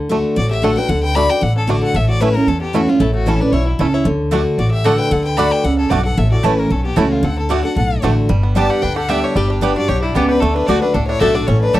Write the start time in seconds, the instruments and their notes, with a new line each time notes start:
Already playing: upright bass D2
0.09 steel-string acoustic guitar D3 A3 D4 F#4, five-string banjo A3 D4
0.36 upright bass A1, steel-string acoustic guitar A2, resonator guitar played with a steel bar F#4, fiddle D5
0.51 resonator guitar played with a steel bar G4, fiddle E5
0.62 steel-string acoustic guitar D3 A3 D4 F#4, five-string banjo A3 D4, resonator guitar played with a steel bar A4, fiddle F#5
0.76 steel-string acoustic guitar D4 F#4, resonator guitar played with a steel bar B4, fiddle G5
0.89 upright bass D2, steel-string acoustic guitar D3, resonator guitar played with a steel bar A4, fiddle F#5
1.03 resonator guitar played with a steel bar B4, fiddle G5
1.15 steel-string acoustic guitar D3 A3 D4 F#4, five-string banjo A3 D4, resonator guitar played with a steel bar D5, fiddle B5
1.29 steel-string acoustic guitar D4 F#4, resonator guitar played with a steel bar B4, fiddle G5
1.41 upright bass A1, steel-string acoustic guitar A2, resonator guitar played with a steel bar A4, fiddle F#5
1.56 resonator guitar played with a steel bar C#4, fiddle A4
1.67 steel-string acoustic guitar D3 A3 D4 F#4, five-string banjo A3 D4, resonator guitar played with a steel bar F#4, fiddle D5
1.82 resonator guitar played with a steel bar A4, fiddle F#5
1.94 upright bass A1, steel-string acoustic guitar A2, resonator guitar played with a steel bar A4, fiddle E5
2.09 resonator guitar played with a steel bar F#4, fiddle D5
2.20 steel-string acoustic guitar E3 A3 C#4 E4, five-string banjo A3 C#4 E4, resonator guitar played with a steel bar E4, fiddle B4
2.34 resonator guitar played with a steel bar C#4, steel-string acoustic guitar C#4 E4, fiddle A#4
2.47 upright bass E2, steel-string acoustic guitar E2, resonator guitar played with a steel bar C#4, fiddle A4
2.60 resonator guitar played with a steel bar B3, fiddle G4
2.73 steel-string acoustic guitar E3 A3 C#4 E4, resonator guitar played with a steel bar A3, five-string banjo A3 C#4 E4, fiddle F#4
2.87 resonator guitar played with a steel bar G3, steel-string acoustic guitar C#4 E4, fiddle F4
3.00 upright bass A1, steel-string acoustic guitar A2, resonator guitar played with a steel bar A3, fiddle E4
3.13 resonator guitar played with a steel bar A3, fiddle F#4
3.26 steel-string acoustic guitar E3 A3 C#4 E4, five-string banjo A3 C#4 E4, resonator guitar played with a steel bar C#4, fiddle A4
3.40 steel-string acoustic guitar C#4 E4, resonator guitar played with a steel bar D4, fiddle B4
3.52 upright bass B1, steel-string acoustic guitar B2, resonator guitar played with a steel bar E4, fiddle C#5
3.66 fiddle E4, muted resonator guitar played with a steel bar stroke
3.79 upright bass C#2, steel-string acoustic guitar C#3, five-string banjo A3 C#4 E4, resonator guitar played with a steel bar C#4, fiddle A4
3.93 resonator guitar played with a steel bar E4, fiddle C#5
4.05 upright bass D2, steel-string acoustic guitar D3
4.31 steel-string acoustic guitar D3 A3 D4 F#4, mandolin A3 F#4 D5 F#5, five-string banjo A3 D4
4.58 upright bass A1, steel-string acoustic guitar A2, resonator guitar played with a steel bar F#4, fiddle D5
4.71 resonator guitar played with a steel bar G4, fiddle E5
4.84 steel-string acoustic guitar D3 A3 D4 F#4, mandolin A3 F#4 D5 F#5, five-string banjo A3 D4, resonator guitar played with a steel bar A4, fiddle F#5
4.98 resonator guitar played with a steel bar B4, fiddle G5
5.10 upright bass D2, steel-string acoustic guitar D3, resonator guitar played with a steel bar A4, fiddle F#5
5.25 resonator guitar played with a steel bar B4, fiddle G5
5.37 steel-string acoustic guitar D3 A3 D4 F#4, mandolin A3 F#4 D5 F#5, five-string banjo A3 D4, resonator guitar played with a steel bar D5, fiddle B5
5.51 resonator guitar played with a steel bar B4, fiddle G5
5.64 upright bass C#2, steel-string acoustic guitar C#3, resonator guitar played with a steel bar A4, fiddle F#5
5.78 resonator guitar played with a steel bar C#4, fiddle A4
5.90 upright bass B1, steel-string acoustic guitar G2, mandolin A3 F#4 D5 F#5, five-string banjo A3 D4, resonator guitar played with a steel bar F#4, fiddle D5
6.05 resonator guitar played with a steel bar A4, fiddle F#5
6.17 upright bass A1, steel-string acoustic guitar A2, resonator guitar played with a steel bar A4, fiddle E5
6.32 resonator guitar played with a steel bar F#4, fiddle D5
6.43 upright bass A1, steel-string acoustic guitar E3 A3 C#4 E4, mandolin A3 E4 C#5 A5, five-string banjo A3 C#4 E4, resonator guitar played with a steel bar E4, fiddle B4
6.58 resonator guitar played with a steel bar C#4, fiddle A#4
6.70 upright bass B1, steel-string acoustic guitar E2, resonator guitar played with a steel bar C#4, fiddle A4
6.85 resonator guitar played with a steel bar B3, fiddle G4
6.96 upright bass C#2, steel-string acoustic guitar E3 A3 C#4 E4, mandolin A3 E4 C#5 A5, five-string banjo A3 C#4 E4, resonator guitar played with a steel bar A3, fiddle F#4
7.12 resonator guitar played with a steel bar G3, fiddle F4
7.23 upright bass D2, steel-string acoustic guitar D3, resonator guitar played with a steel bar A4, fiddle F#5
7.38 fiddle A4, muted resonator guitar played with a steel bar stroke
7.49 steel-string acoustic guitar D3 A3 D4 F#4, mandolin A3 F#4 D5 F#5, five-string banjo A3 D4, resonator guitar played with a steel bar F#4, fiddle D5
7.63 steel-string acoustic guitar D4 F#4, resonator guitar played with a steel bar A4, fiddle F#5
7.76 upright bass B1, steel-string acoustic guitar A2, resonator guitar played with a steel bar A4, fiddle F#5
8.02 upright bass A1, steel-string acoustic guitar D3 A3 D4 F#4, mandolin A3 F#4 D5 F#5, five-string banjo A3 D4
8.29 upright bass G1, steel-string acoustic guitar G2, five-string banjo G3
8.43 five-string banjo B3
8.55 steel-string acoustic guitar G3 B3 D4 G4, mandolin B3 G4 D5 G5, five-string banjo D4, resonator guitar played with a steel bar D5, fiddle A5
8.70 five-string banjo G4, resonator guitar played with a steel bar A4, fiddle F#5
8.82 upright bass D2, steel-string acoustic guitar D3, five-string banjo D4, resonator guitar played with a steel bar B4, fiddle G5
8.96 five-string banjo G4, resonator guitar played with a steel bar A4, fiddle F#5
9.09 steel-string acoustic guitar G3 B3 D4 G4, mandolin B3 G4 D5 G5, five-string banjo D4, resonator guitar played with a steel bar G4, fiddle E5
9.24 resonator guitar played with a steel bar E4, five-string banjo G4, fiddle C#5
9.36 upright bass G1, steel-string acoustic guitar G2, five-string banjo G3, resonator guitar played with a steel bar G4, fiddle D5
9.50 five-string banjo D4, fiddle G4, muted resonator guitar played with a steel bar stroke
9.61 steel-string acoustic guitar G3 B3 D4 G4, five-string banjo G3, mandolin B3 G4 D5 G5, resonator guitar played with a steel bar D4, fiddle B4
9.76 five-string banjo D4, steel-string acoustic guitar D4 G4, resonator guitar played with a steel bar F#4, fiddle D5
9.88 upright bass B1, steel-string acoustic guitar B2, five-string banjo G4, resonator guitar played with a steel bar G4, fiddle C#5
10.02 resonator guitar played with a steel bar G3, five-string banjo D4, fiddle E4
10.14 upright bass C#2, steel-string acoustic guitar C#3, mandolin B3 G4 D5 G5, five-string banjo B3, resonator guitar played with a steel bar B3, fiddle G4
10.28 resonator guitar played with a steel bar D4, five-string banjo G4, fiddle B4
10.40 upright bass D2, steel-string acoustic guitar D3, five-string banjo A3, resonator guitar played with a steel bar D4, fiddle A4
10.54 resonator guitar played with a steel bar D4, five-string banjo D4, fiddle B4
10.67 upright bass D2, steel-string acoustic guitar D3 A3 D4 F#4, mandolin A3 F#4 D5 F#5, five-string banjo D4, resonator guitar played with a steel bar F#4, fiddle D5
10.81 resonator guitar played with a steel bar D4, five-string banjo D4, steel-string acoustic guitar D4 F#4, fiddle B4
10.94 upright bass C#2, steel-string acoustic guitar A2, five-string banjo D4, resonator guitar played with a steel bar D4, fiddle A4
11.07 five-string banjo D4, resonator guitar played with a steel bar E4, fiddle C#5
11.20 upright bass B1, steel-string acoustic guitar D3 A3 D4 F#4, mandolin A3 F#4 D5 F#5, five-string banjo D4, resonator guitar played with a steel bar A4, fiddle E5
11.35 five-string banjo D4, resonator guitar played with a steel bar F#4, fiddle D5
11.47 upright bass A1, steel-string acoustic guitar A2, five-string banjo C#4, resonator guitar played with a steel bar E4, fiddle C#5
11.61 resonator guitar played with a steel bar D4, fiddle B4
11.73 upright bass A1, steel-string acoustic guitar E3 A3 C#4 E4, mandolin A3 E4 C#5 A5, resonator guitar played with a steel bar C#4, five-string banjo G4, fiddle A4